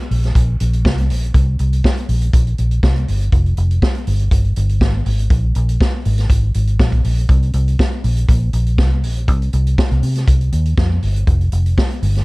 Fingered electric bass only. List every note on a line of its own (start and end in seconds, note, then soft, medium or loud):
0.11 0.31 A#1 medium
0.35 0.56 A#1 loud
0.61 0.85 A#1 medium
0.85 1.10 C2 medium
1.10 1.30 A#1 medium
1.35 1.55 C2 loud
1.60 1.80 C2 medium
2.09 2.29 A#1 medium
2.33 2.54 A#1 medium
2.59 2.79 A#1 medium
2.83 3.03 C2 medium
3.08 3.28 G1 medium
3.32 3.53 F1 medium
3.58 3.78 F1 loud
4.07 4.27 G1 medium
4.32 4.52 G1 loud
4.57 4.81 G1 medium
4.81 5.01 G#1 medium
5.06 5.26 G#1 medium
5.31 5.51 A#1 loud
5.56 5.76 A#1 medium
6.06 6.26 G#1 loud
6.30 6.50 G#1 medium
6.55 6.75 G#1 medium
6.80 7.00 A#1 medium
7.05 7.25 A#1 medium
7.29 7.50 C2 loud
7.54 7.74 C2 loud
8.04 8.24 A#1 medium
8.29 8.49 A#1 loud
8.53 8.79 A#1 medium
8.79 9.04 C2 medium
9.04 9.28 A#1 medium
9.28 9.49 C2 loud
9.54 9.74 C2 loud
9.91 10.01 C2 medium
10.03 10.23 C3 medium
10.28 10.48 C2 medium
10.53 10.73 D#2 loud
10.78 10.98 F2 medium
11.03 11.23 G1 medium
11.28 11.48 F1 loud
11.53 11.73 F1 loud
12.02 12.23 G1 medium